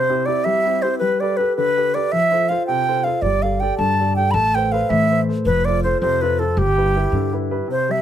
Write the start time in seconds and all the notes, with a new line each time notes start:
Already playing: C3 C5
0.09 C4 E4 G4
0.26 C4 E4 G4 D5
0.44 G3 E5
0.65 C4 E4 G4
0.82 C4 E4 G4 C5
0.98 G3 B4
1.20 G4 A4 B4 D5
1.37 G4 A4 B4
1.56 D3 B4
1.77 G4 A4 B4
1.94 G4 A4 B4 D5
2.12 F3 E5
2.31 F4 A4 C5
2.49 F4 A4 C5 F5
2.67 C3 G5
2.88 F4 A4 C5
3.04 F4 A4 C5 F5
3.22 G1 G3 D5
3.42 G4 A4 D5 F5
3.60 G4 A4 D5 G5
3.78 G2 D3 A5
4.00 G4 A4 D5
4.16 G4 A4 D5 G5
4.31 A1 A3 A5 B5
4.55 A4 B4 C5 G5
4.72 A4 B4 C5 F5
4.89 A2 E3 E5
5.10 A4 B4 C5
5.28 A4 B4 C5
5.45 F1 F3 B4
5.65 F4 A4 C5 D5
5.83 F4 A4 C5
6.01 F2 C3 C5
6.21 F4 A4 B4 C5
6.39 F4 A4 C5
6.57 G1 G3 G4
6.77 E4 G4 B4
6.96 E4 G4 B4
7.12 G2 D3
7.33 E4 G4 B4
7.51 E4 G4 B4
7.68 C3 C5
7.89 G3 E5